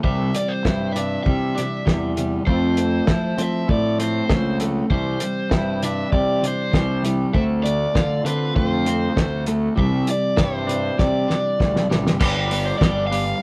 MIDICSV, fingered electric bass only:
0, 0, Header, 1, 2, 480
1, 0, Start_track
1, 0, Tempo, 607287
1, 36, Time_signature, 4, 2, 24, 8
1, 10607, End_track
2, 0, Start_track
2, 0, Title_t, "Fingered electric bass"
2, 0, Program_c, 0, 33
2, 27, Note_on_c, 0, 36, 79
2, 234, Note_off_c, 0, 36, 0
2, 513, Note_on_c, 0, 43, 79
2, 920, Note_off_c, 0, 43, 0
2, 995, Note_on_c, 0, 48, 88
2, 1198, Note_off_c, 0, 48, 0
2, 1478, Note_on_c, 0, 40, 88
2, 1883, Note_off_c, 0, 40, 0
2, 1955, Note_on_c, 0, 41, 86
2, 2362, Note_off_c, 0, 41, 0
2, 2433, Note_on_c, 0, 53, 90
2, 2638, Note_off_c, 0, 53, 0
2, 2671, Note_on_c, 0, 53, 75
2, 2877, Note_off_c, 0, 53, 0
2, 2912, Note_on_c, 0, 45, 83
2, 3321, Note_off_c, 0, 45, 0
2, 3396, Note_on_c, 0, 37, 90
2, 3803, Note_off_c, 0, 37, 0
2, 3873, Note_on_c, 0, 36, 88
2, 4079, Note_off_c, 0, 36, 0
2, 4359, Note_on_c, 0, 43, 85
2, 4765, Note_off_c, 0, 43, 0
2, 4842, Note_on_c, 0, 48, 86
2, 5045, Note_off_c, 0, 48, 0
2, 5324, Note_on_c, 0, 36, 97
2, 5728, Note_off_c, 0, 36, 0
2, 5805, Note_on_c, 0, 38, 92
2, 6209, Note_off_c, 0, 38, 0
2, 6287, Note_on_c, 0, 50, 95
2, 6488, Note_off_c, 0, 50, 0
2, 6516, Note_on_c, 0, 50, 77
2, 6721, Note_off_c, 0, 50, 0
2, 6767, Note_on_c, 0, 41, 83
2, 7171, Note_off_c, 0, 41, 0
2, 7249, Note_on_c, 0, 38, 103
2, 7652, Note_off_c, 0, 38, 0
2, 7728, Note_on_c, 0, 36, 93
2, 7928, Note_off_c, 0, 36, 0
2, 8207, Note_on_c, 0, 43, 89
2, 8610, Note_off_c, 0, 43, 0
2, 8690, Note_on_c, 0, 48, 90
2, 8889, Note_off_c, 0, 48, 0
2, 9171, Note_on_c, 0, 38, 96
2, 9268, Note_off_c, 0, 38, 0
2, 9280, Note_on_c, 0, 35, 81
2, 9389, Note_off_c, 0, 35, 0
2, 9408, Note_on_c, 0, 33, 88
2, 9513, Note_off_c, 0, 33, 0
2, 9523, Note_on_c, 0, 31, 74
2, 9630, Note_off_c, 0, 31, 0
2, 9650, Note_on_c, 0, 31, 97
2, 10050, Note_off_c, 0, 31, 0
2, 10125, Note_on_c, 0, 31, 103
2, 10527, Note_off_c, 0, 31, 0
2, 10607, End_track
0, 0, End_of_file